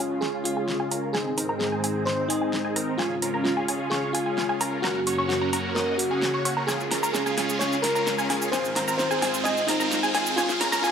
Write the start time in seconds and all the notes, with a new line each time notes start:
Already playing: C#3 G#3 F4, riser
0.00 C#4 F4 G#4 G#5
0.21 C#4 F4 G#4 C#5 C#6, snare
0.44 C#4 F4 G#4 G#5, open hi-hat
0.57 C#4 F4 G#4 G#5
0.68 snare
0.80 C#4 F4 G#4 G#5
0.91 C#4 F4 A#4 A#5, open hi-hat
1.13 G#2 D#3 C4 D#4 G#4 G#5, snare
1.38 C4 D#4 A#4 A#5, open hi-hat
1.49 C4 D#4 A#4 A#5
1.59 G#4, snare
1.72 C4 D#4 G#4 G#5
1.84 C4 D#4 G#4 G#5, open hi-hat
2.05 C4 D#4 C5 C6, snare
2.28 C4 D#4 G#4 G#5, open hi-hat
2.41 C4 D#4 G#4 G#5
2.53 snare
2.65 C4 D#4 G#4 G#5
2.76 C4 D#4 A#4 A#5, open hi-hat
2.98 C#3 G#3 C#4 F4 G#4 G#5, snare
3.22 C#4 F4 A#4 A#5, open hi-hat
3.34 C#4 F4 A#4 A#5
3.44 F4, snare
3.57 C#4 F4 G#4 G#5
3.68 C#4 F4 G#4 G#5, open hi-hat
3.90 C#4 F4 G#4 C#5 C#6, snare
4.13 C#4 F4 G#4 G#5, open hi-hat
4.26 C#4 F4 G#4 G#5
4.38 snare
4.49 C#4 F4 G#4 G#5
4.61 C#4 F4 A#4 A#5, open hi-hat
4.82 F#2 A#3 C#4 F#4 A#4 A#5, snare
5.07 C#4 F#4 C#5 C#6, open hi-hat
5.18 C#4 F#4 C#5 C#6
5.28 F#4, snare
5.41 C#4 F#4 A#4 A#5
5.53 C#4 F#4 A#4 A#5, open hi-hat
5.75 C#4 F#4 A#4 D#5 D#6, snare
5.98 F#4, open hi-hat
6.11 C#4 F#4 G#4 G#5
6.22 snare
6.34 C#4 F#4 C#5 C#6
6.45 C#4 F#4 C#5 C#6, open hi-hat
6.57 C#4 F#4 A#4 A#5
6.67 G#3 C#4 F4 G#4 G#5, snare, shaker
6.80 shaker
6.91 C#4 F4 A#4 A#5, snare, open hi-hat
7.03 C#4 F4 A#4 A#5, shaker
7.13 G#4, snare, shaker
7.26 C#4 F4 G#4 G#5, shaker
7.38 C#4 F4 G#4 G#5, snare, open hi-hat
7.50 shaker
7.59 C#4 F4 G#4 C#5 G#5, snare, shaker
7.73 shaker
7.82 C#4 F4 A#4 A#5, snare, open hi-hat
7.95 C#4 F4 A#4 A#5, shaker
8.07 snare, shaker
8.18 C#4 F4 G#4 G#5, shaker
8.30 C#4 F4 G#4 G#5, snare, open hi-hat
8.42 shaker
8.52 G#2 D#3 C4 F4 G#4 C5 G#5, snare, shaker
8.65 shaker
8.76 C4 F4 A#4 A#5, snare, open hi-hat
8.88 C4 F4 A#4 A#5, shaker
8.98 C5, snare, shaker
9.11 C4 F4 G#4 G#5, shaker
9.22 C4 F4 G#4 G#5, snare, open hi-hat
9.34 shaker
9.44 C4 F4 G#4 D#5 G#5, snare, shaker
9.57 shaker
9.67 C4 D#4 F4 A#4 A#5, snare, open hi-hat
9.80 C4 F4 A#4 A#5, shaker
9.92 snare, shaker
10.03 C4 F4 G#4 G#5, shaker
10.15 C4 F4 G#4 G#5, snare, open hi-hat
10.27 shaker
10.36 C#3 G#3 C#4 F4 G#4 G#5, snare, shaker
10.49 snare, shaker
10.61 C#4 F4 A#4 A#5, snare, open hi-hat
10.72 C#4 F4 A#4 A#5, snare, shaker
10.82 C#4 F4 G#4 G#5, snare, shaker